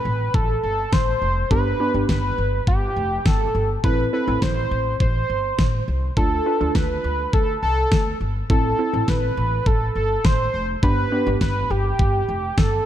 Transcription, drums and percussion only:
0.34 kick loud
0.93 kick loud
0.93 snare loud
1.51 kick loud
2.09 kick loud
2.09 snare loud
2.67 kick loud
3.26 kick loud
3.26 snare medium
3.84 kick loud
4.42 kick loud
4.42 snare loud
5.00 kick loud
5.59 kick loud
5.59 snare loud
6.17 kick loud
6.75 kick loud
6.75 snare loud
7.33 kick loud
7.92 kick loud
7.92 snare loud
8.50 kick loud
9.08 kick loud
9.08 snare loud
9.66 kick loud
10.25 kick loud
10.25 snare loud
10.83 kick loud
11.41 kick loud
11.41 snare loud
11.99 kick loud
12.58 kick loud
12.58 snare medium

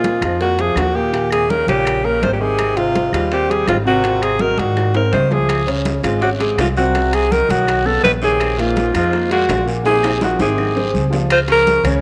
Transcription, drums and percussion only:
0.04 high bongo medium
0.04 high conga medium
0.04 high timbale medium
0.04 low timbale medium
0.22 high conga soft
0.22 high timbale medium
0.22 claves medium
0.41 high bongo medium
0.41 high conga soft
0.59 high conga soft
0.59 high timbale medium
0.76 high bongo medium
0.76 low bongo medium
0.76 high conga soft
0.76 high timbale medium
0.76 low timbale medium
0.76 claves medium
1.14 high bongo medium
1.14 high conga soft
1.14 high timbale medium
1.31 high conga soft
1.31 high timbale medium
1.31 claves medium
1.50 high bongo medium
1.50 high conga medium
1.50 low timbale medium
1.68 high bongo soft
1.68 high conga medium
1.68 high timbale medium
1.85 high bongo medium
1.85 high conga soft
1.85 high timbale medium
1.85 claves medium
2.04 high bongo soft
2.04 high conga soft
2.23 high bongo medium
2.23 low bongo medium
2.23 high conga medium
2.23 high timbale medium
2.23 low timbale medium
2.42 high bongo soft
2.59 high bongo medium
2.59 high conga soft
2.59 high timbale medium
2.59 claves medium
2.77 high conga soft
2.77 high timbale medium
2.95 high bongo medium
2.95 high conga medium
2.95 high timbale medium
2.95 low timbale medium
3.13 high conga soft
3.13 high timbale medium
3.13 claves medium
3.31 high bongo medium
3.31 high conga soft
3.50 high conga soft
3.50 high timbale medium
3.67 high bongo medium
3.67 low bongo medium
3.67 high conga soft
3.67 high timbale medium
3.67 low timbale medium
3.67 claves medium
4.03 high bongo medium
4.03 high conga soft
4.03 high timbale medium
4.22 high conga soft
4.22 high timbale medium
4.22 claves medium
4.39 high bongo medium
4.39 high conga medium
4.39 low timbale soft
4.58 high bongo soft
4.58 high conga medium
4.58 high timbale medium
4.77 high bongo medium
4.77 high conga soft
4.77 high timbale medium
4.77 claves medium
4.94 high bongo soft
4.94 high conga soft
4.94 high timbale loud
5.13 high bongo medium
5.13 low bongo medium
5.13 high conga medium
5.13 low timbale medium
5.31 high bongo soft
5.31 high conga medium
5.31 low timbale medium
5.49 high bongo medium
5.49 high conga soft
5.49 high timbale medium
5.49 long guiro medium
5.49 claves medium
5.68 high conga soft
5.68 high timbale medium
5.85 high bongo medium
5.85 high conga medium
5.85 high timbale medium
5.85 low timbale medium
5.85 short guiro medium
6.04 high conga soft
6.04 high timbale medium
6.04 short guiro medium
6.04 claves medium
6.22 high bongo medium
6.22 high conga soft
6.22 long guiro medium
6.40 high conga soft
6.40 high timbale medium
6.58 high bongo medium
6.58 low bongo medium
6.58 high timbale medium
6.58 low timbale medium
6.58 short guiro medium
6.58 claves medium
6.77 high conga medium
6.77 short guiro medium
6.95 high bongo medium
6.95 high conga soft
6.95 high timbale medium
6.95 long guiro medium
7.13 high conga soft
7.13 high timbale medium
7.13 claves medium
7.32 high bongo medium
7.32 high conga medium
7.32 low timbale soft
7.32 short guiro medium
7.50 high bongo soft
7.50 high conga medium
7.50 high timbale medium
7.50 short guiro medium
7.67 high bongo medium
7.67 high conga soft
7.67 high timbale medium
7.67 long guiro medium
7.67 claves medium
7.87 high bongo soft
7.87 high conga soft
8.04 high bongo medium
8.04 low bongo medium
8.04 high conga medium
8.04 high timbale medium
8.04 low timbale medium
8.04 short guiro medium
8.22 high bongo soft
8.22 short guiro medium
8.40 high bongo medium
8.40 high conga soft
8.40 high timbale medium
8.40 long guiro medium
8.40 claves medium
8.59 high conga soft
8.59 high timbale medium
8.76 high bongo medium
8.76 high conga medium
8.76 high timbale medium
8.76 low timbale medium
8.76 short guiro medium
8.94 high conga soft
8.94 high timbale medium
8.94 short guiro medium
8.94 claves medium
9.13 high bongo medium
9.13 high conga soft
9.13 long guiro medium
9.31 high conga soft
9.31 high timbale medium
9.49 high bongo medium
9.49 low bongo medium
9.49 high conga soft
9.49 high timbale medium
9.49 low timbale medium
9.49 short guiro medium
9.49 claves medium
9.68 short guiro medium
9.85 high bongo medium
9.85 high conga soft
9.85 high timbale medium
9.85 long guiro medium
10.03 high bongo medium
10.03 high conga soft
10.03 high timbale loud
10.03 claves medium
10.21 high bongo medium
10.21 high conga medium
10.21 high timbale medium
10.21 short guiro medium
10.39 high conga medium
10.39 high timbale medium
10.39 short guiro medium
10.58 low bongo medium
10.58 high conga soft
10.58 long guiro medium
10.58 claves medium
10.77 low bongo medium
10.77 high conga soft
10.95 high conga medium
10.95 short guiro medium
11.13 low bongo medium
11.13 low timbale medium
11.13 short guiro medium
11.30 high bongo medium
11.30 high conga soft
11.30 high timbale loud
11.30 long guiro medium
11.30 claves medium
11.48 high bongo soft
11.48 high conga soft
11.48 high timbale medium
11.67 high bongo medium
11.67 high conga loud
11.67 short guiro medium
11.85 high conga soft
11.85 low conga medium
11.85 high timbale medium
11.85 short guiro medium
11.85 claves medium

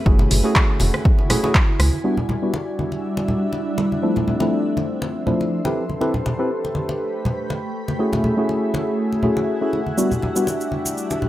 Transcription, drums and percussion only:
0.06 kick loud
0.19 muted conga medium
0.19 low conga medium
0.30 open hi-hat loud
0.30 low conga medium
0.55 kick loud
0.55 clap loud
0.55 muted conga medium
0.80 open hi-hat medium
0.80 muted conga medium
0.80 high conga medium
0.94 cross-stick medium
0.94 high conga medium
1.05 kick loud
1.19 muted conga medium
1.30 cross-stick medium
1.30 open hi-hat loud
1.30 low conga medium
1.44 muted conga medium
1.55 kick loud
1.55 clap loud
1.80 cross-stick medium
1.80 open hi-hat medium
1.80 muted conga soft
1.93 high conga medium
2.04 crash medium
2.17 low conga medium
2.29 muted conga soft
2.29 low conga medium
2.54 muted conga medium
2.79 high conga medium
2.92 muted conga soft
3.17 muted conga medium
3.28 low conga medium
3.53 muted conga soft
3.78 muted conga medium
3.92 high conga medium
4.16 muted conga soft
4.16 low conga medium
4.28 low conga medium
4.40 muted conga medium
4.77 muted conga medium
4.77 high conga medium
5.02 muted conga medium
5.27 low conga medium
5.41 muted conga soft
5.65 muted conga medium
5.90 high conga medium
6.01 muted conga soft
6.14 low conga medium
6.26 muted conga medium
6.26 low conga medium
6.65 muted conga soft
6.75 high conga medium
6.89 muted conga medium
7.25 muted conga soft
7.25 low conga medium
7.50 muted conga medium
7.88 muted conga soft
7.88 high conga medium
8.13 muted conga medium
8.13 low conga medium
8.24 low conga medium
8.49 muted conga soft
8.74 muted conga medium
8.74 high conga medium
9.13 muted conga soft
9.23 low conga medium
9.37 muted conga medium
9.73 muted conga soft
9.87 high conga medium
9.98 cabasa medium
10.12 low conga medium
10.12 cabasa soft
10.22 muted conga soft
10.22 low conga medium
10.36 cabasa medium
10.47 muted conga medium
10.47 cabasa medium
10.61 cabasa soft
10.72 high conga medium
10.86 muted conga soft
10.86 cabasa medium
10.97 cabasa medium
11.10 muted conga medium
11.10 cabasa soft
11.22 low conga medium

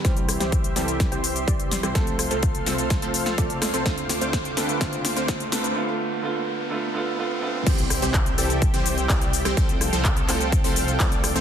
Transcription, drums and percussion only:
0.05 kick loud
0.05 snare soft
0.05 closed hi-hat medium
0.05 shaker soft
0.17 closed hi-hat soft
0.17 shaker soft
0.29 cross-stick medium
0.29 open hi-hat loud
0.29 shaker medium
0.40 snare soft
0.40 closed hi-hat soft
0.40 shaker soft
0.52 kick loud
0.52 closed hi-hat medium
0.52 shaker soft
0.64 closed hi-hat soft
0.64 shaker soft
0.76 snare soft
0.76 open hi-hat medium
0.76 shaker medium
0.88 closed hi-hat soft
0.88 shaker soft
1.00 kick loud
1.00 snare soft
1.00 closed hi-hat medium
1.00 shaker soft
1.12 closed hi-hat soft
1.12 shaker soft
1.24 open hi-hat loud
1.24 shaker medium
1.36 closed hi-hat soft
1.36 shaker soft
1.48 kick loud
1.48 closed hi-hat medium
1.48 shaker soft
1.60 closed hi-hat soft
1.60 shaker soft
1.71 snare medium
1.71 open hi-hat medium
1.71 shaker medium
1.83 cross-stick medium
1.83 closed hi-hat soft
1.83 shaker soft
1.95 kick loud
1.95 snare medium
1.95 closed hi-hat medium
1.95 shaker soft
2.07 closed hi-hat soft
2.07 shaker soft
2.19 cross-stick medium
2.19 open hi-hat loud
2.19 shaker medium
2.31 closed hi-hat soft
2.31 shaker soft
2.43 kick loud
2.43 closed hi-hat medium
2.43 shaker soft
2.55 closed hi-hat soft
2.55 shaker soft
2.66 snare medium
2.66 open hi-hat medium
2.66 shaker medium
2.78 closed hi-hat soft
2.78 shaker soft
2.90 kick loud
2.90 snare medium
2.90 closed hi-hat medium
2.90 shaker soft
3.02 closed hi-hat soft
3.02 shaker soft
3.14 open hi-hat loud
3.14 shaker medium
3.26 snare medium
3.26 closed hi-hat soft
3.26 shaker soft
3.38 kick loud
3.38 closed hi-hat medium
3.38 shaker soft
3.50 closed hi-hat soft
3.50 shaker soft
3.62 cross-stick medium
3.62 snare medium
3.62 open hi-hat medium
3.62 shaker medium
3.74 closed hi-hat soft
3.74 shaker soft
3.86 kick loud
3.86 snare medium
3.86 closed hi-hat medium
3.86 shaker soft
3.98 closed hi-hat soft
3.98 shaker soft
4.09 snare medium
4.09 open hi-hat loud
4.09 shaker medium
4.21 closed hi-hat soft
4.21 shaker soft
4.33 kick loud
4.33 snare medium
4.33 closed hi-hat medium
4.33 shaker soft
4.45 closed hi-hat soft
4.45 shaker soft
4.57 snare medium
4.57 open hi-hat medium
4.57 shaker medium
4.69 closed hi-hat soft
4.69 shaker soft
4.81 kick loud
4.81 snare medium
4.81 closed hi-hat medium
4.81 shaker soft
4.93 closed hi-hat soft
4.93 shaker soft
5.05 snare medium
5.05 open hi-hat loud
5.05 shaker medium
5.16 closed hi-hat soft
5.16 shaker soft
5.28 kick loud
5.28 snare medium
5.28 closed hi-hat medium
5.28 shaker soft
5.40 closed hi-hat soft
5.40 shaker soft
5.52 snare medium
5.52 open hi-hat loud
5.52 shaker medium
5.64 closed hi-hat soft
5.64 shaker soft
7.67 kick loud
7.67 closed hi-hat medium
7.67 crash loud
7.67 shaker soft
7.78 closed hi-hat soft
7.78 shaker soft
7.90 cross-stick medium
7.90 open hi-hat loud
7.90 shaker medium
8.02 closed hi-hat soft
8.02 shaker soft
8.14 kick loud
8.14 clap loud
8.14 closed hi-hat medium
8.14 shaker soft
8.26 closed hi-hat soft
8.26 shaker soft
8.38 open hi-hat loud
8.38 shaker medium
8.50 closed hi-hat soft
8.50 shaker soft
8.62 kick loud
8.62 closed hi-hat medium
8.62 shaker soft
8.74 closed hi-hat soft
8.74 shaker soft
8.86 open hi-hat loud
8.86 shaker medium
8.98 closed hi-hat soft
8.98 shaker soft
9.09 kick loud
9.09 clap loud
9.09 closed hi-hat medium
9.09 shaker soft
9.21 closed hi-hat soft
9.21 shaker soft
9.33 open hi-hat loud
9.33 shaker medium
9.45 cross-stick medium
9.45 closed hi-hat soft
9.45 shaker soft
9.57 kick loud
9.57 closed hi-hat medium
9.57 shaker soft
9.69 closed hi-hat soft
9.69 shaker soft
9.81 cross-stick medium
9.81 open hi-hat loud
9.81 shaker medium
9.93 closed hi-hat soft
9.93 shaker soft
10.05 kick loud
10.05 clap loud
10.05 closed hi-hat medium
10.05 shaker soft
10.17 closed hi-hat soft
10.17 shaker soft
10.28 clap medium
10.28 open hi-hat loud
10.28 shaker medium
10.41 closed hi-hat soft
10.41 shaker soft
10.52 kick loud
10.52 closed hi-hat medium
10.52 shaker soft
10.64 open hi-hat medium
10.64 shaker soft
10.76 open hi-hat loud
10.76 shaker medium
10.88 closed hi-hat soft
10.88 shaker soft
11.00 kick loud
11.00 clap loud
11.00 closed hi-hat medium
11.00 shaker soft
11.12 closed hi-hat soft
11.12 shaker soft
11.24 cross-stick medium
11.24 open hi-hat loud
11.24 shaker medium
11.36 closed hi-hat soft
11.36 shaker soft

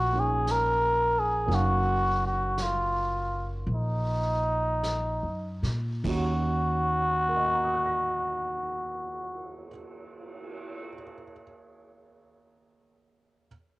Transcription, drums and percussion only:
0.47 brush sweep soft
0.47 snare soft
0.47 hi-hat pedal soft
1.51 brush sweep soft
1.51 snare soft
2.58 brush sweep soft
2.58 snare soft
2.58 hi-hat pedal medium
3.68 brush sweep soft
4.83 brush sweep soft
4.83 snare soft
4.83 hi-hat pedal soft
5.63 snare soft
6.04 kick soft
6.04 crash medium
6.85 cymbal swell soft

